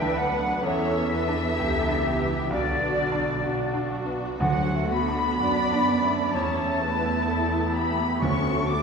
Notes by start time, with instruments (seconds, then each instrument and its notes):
Already playing: grand piano B1 B3 D4 A4, double bass section D2, cello section E3, viola section D4 B4, violin section B4 E5, flute section E5
0.02 grand piano D4
0.18 cello section F#3, flute section F#5, violin section F#5
0.33 grand piano B3
0.63 grand piano E2, double bass section E2, cello section E3, viola section C#4 A4, violin section C#5 E5, flute section E5
0.95 grand piano B3
1.10 viola section B3, violin section B4
1.28 grand piano D4
1.57 double bass section C#2, viola section G4, grand piano G4, violin section A4
1.89 grand piano D4
2.04 viola section G4, violin section G4
2.20 grand piano B3
2.50 grand piano B1, double bass section B1, cello section D3, viola section D4 F#4, violin section F#4 D5, flute section D5
2.81 grand piano B3
3.12 grand piano D4
3.43 viola section D4 F#4, grand piano F#4, violin section F#4
3.74 grand piano D4
4.06 grand piano B3
4.40 grand piano D2, double bass section D2, timpani D3, cello section F#3, viola section A3 F#4, flute section F#5, violin section F#5
4.75 grand piano A3
4.91 cello section B3, flute section B5, violin section B5
5.08 grand piano D4
5.40 double bass section F#2, viola section D4, grand piano F#4, violin section D5
5.72 grand piano D4
6.02 grand piano A3
6.34 grand piano E2, double bass section E2, cello section A3, viola section C#4 E4, violin section C#5 A5, flute section A5
6.65 grand piano A3
6.81 viola section B3, violin section B4
6.96 grand piano B3
7.27 grand piano A4, violin section A4
7.59 grand piano B3
7.73 cello section B3, violin section G4 B5, flute section B5
7.90 grand piano A3
8.20 double bass section D2, grand piano D2, timpani D3, cello section C#4, viola section F#4, violin section A4 C#6, flute section C#6
8.53 grand piano A3
8.69 cello section D4, flute section D6, violin section D6